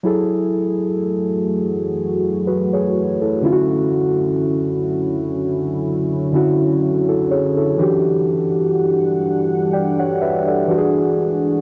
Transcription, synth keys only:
0.03 1.38 F#3 medium
0.03 1.39 E4 medium
0.03 1.39 G#4 medium
0.03 1.40 A4 medium
2.47 2.72 F#4 medium
2.47 2.72 B4 medium
2.73 3.19 G#4 medium
2.73 3.19 C#5 medium
3.22 3.43 E4 medium
3.22 3.67 A4 medium
3.42 4.98 D3 medium
3.42 4.99 C#4 medium
3.42 5.00 E4 medium
3.42 3.52 F4 medium
3.52 5.04 F#4 loud
6.32 7.33 D3 medium
6.32 7.34 C#4 medium
6.32 6.83 E4 medium
6.32 6.83 F#4 medium
7.09 7.30 E4 medium
7.09 7.30 A4 medium
7.31 7.56 G#4 medium
7.31 7.56 C#5 medium
7.57 8.03 E4 medium
7.57 8.03 A4 medium
7.78 9.12 E3 medium
7.78 9.13 D4 medium
7.78 9.14 F#4 medium
7.78 9.14 G4 medium
9.73 9.98 D5 medium
9.73 9.98 G5 medium
9.99 10.20 C#5 medium
9.99 10.20 F#5 medium
10.21 10.46 B4 medium
10.21 10.46 E5 medium
10.47 10.94 A4 soft
10.47 10.93 D5 medium
10.68 11.47 E3 medium
10.68 11.48 D4 medium
10.68 11.49 F#4 medium
10.68 10.77 G4 medium
10.78 11.53 G#4 medium

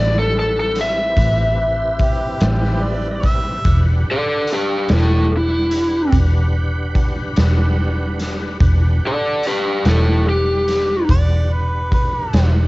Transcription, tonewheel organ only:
0.00 3.61 C4 medium
0.00 3.60 E4 medium
0.00 3.61 G4 medium
0.00 3.61 B4 medium
3.65 8.58 D4 medium
3.65 8.57 G4 medium
3.65 8.58 B4 medium
3.65 8.58 F#5 medium
8.61 12.68 D4 medium
8.61 12.68 G4 medium
8.61 12.68 B4 medium
8.61 12.68 F#5 medium

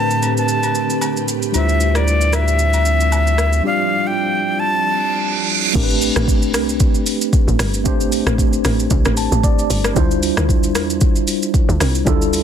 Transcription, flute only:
0.00 0.34 A5 loud
0.38 1.25 A5 loud
1.56 1.98 E5 medium
1.96 2.36 D5 medium
2.35 3.65 E5 loud
3.66 4.08 F5 loud
4.07 4.61 G5 loud
4.60 5.50 A5 loud

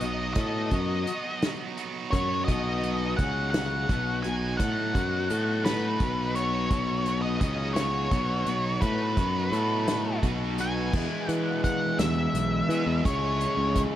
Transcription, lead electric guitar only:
0.00 0.32 D#5 medium
0.34 2.07 D#5 loud
2.11 2.44 C#5 medium
2.45 3.13 D#5 medium
3.17 3.49 F#5 medium
3.51 4.19 F#5 loud
4.23 4.57 G#5 loud
4.57 5.67 F#5 medium
5.65 6.38 B4 medium
6.35 7.20 C#5 medium
7.22 7.39 D#5 medium
7.40 7.74 D#5 medium
7.74 8.84 C#5 medium
8.81 10.19 B4 medium
10.61 11.31 G#5 loud
11.31 11.62 F#5 loud
11.64 11.97 F#5 medium
11.99 13.05 E5 medium
13.06 13.81 C#5 medium

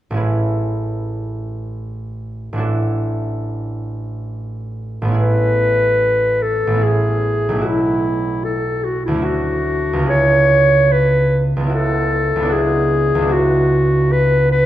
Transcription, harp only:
0.11 2.51 A1 soft
0.11 2.61 C#4 soft
0.11 2.56 E4 soft
0.16 2.63 G#4 soft
0.16 2.63 B4 soft
2.53 5.01 A1 soft
2.53 5.19 D4 soft
2.57 5.10 E4 soft
2.57 5.20 F#4 soft
2.57 6.49 A4 soft
5.02 6.66 A1 soft
5.02 6.70 B3 soft
5.08 6.73 C#4 soft
5.08 6.76 E4 soft
5.14 6.80 G#4 soft
6.67 7.60 A1 soft
6.71 9.22 B3 soft
6.71 7.54 C#4 soft
6.77 7.57 E4 soft
6.81 7.67 G#4 soft
7.49 9.20 B1 soft
7.49 9.10 A3 soft
7.55 9.13 C#4 soft
7.55 9.17 E4 soft
7.61 9.21 F#4 soft
9.08 10.05 D2 soft
9.08 10.07 A3 soft
9.14 9.98 C#4 soft
9.14 10.01 E4 soft
9.22 10.12 F#4 soft
9.93 11.55 C#2 soft
9.93 11.59 B3 soft
9.99 11.62 C#4 soft
9.99 11.65 E4 soft
10.06 11.74 G#4 soft
11.57 12.35 C#2 soft
11.57 12.39 B3 soft
11.63 12.51 C#4 soft
11.63 12.44 E4 soft
11.70 12.48 F#4 soft
12.36 13.14 C#2 soft
12.40 13.17 B3 soft
12.40 13.20 D4 soft
12.45 13.24 E4 soft
12.45 13.28 F#4 soft
13.15 14.66 C#2 soft
13.15 14.66 B3 soft
13.21 14.66 D4 soft
13.21 14.66 E4 soft
13.29 14.66 F#4 soft

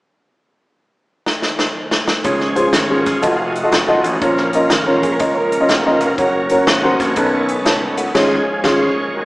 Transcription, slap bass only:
2.25 2.66 C#2 medium
2.72 3.15 G#1 medium
3.23 3.65 F1 medium
3.71 3.99 F#1 medium
4.03 4.18 A1 medium
4.21 4.63 A#1 loud
4.70 5.03 G#1 medium
5.03 5.17 A#1 medium
5.20 5.62 C#2 medium
5.69 5.96 F#1 medium
6.00 6.15 F1 medium
6.18 6.60 F#1 medium
6.66 6.94 G#1 medium
7.00 7.14 A#1 medium
7.16 7.58 B1 loud
7.65 8.07 C#2 medium
8.15 8.37 G#1 medium
8.64 8.86 G#1 medium

